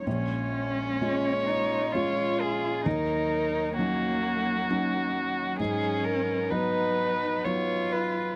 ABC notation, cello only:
X:1
M:3/4
L:1/8
Q:1/4=65
K:Ebm
V:1 name="Cello"
D3 E F2 | E2 B,3 z | D2 E2 F2 |]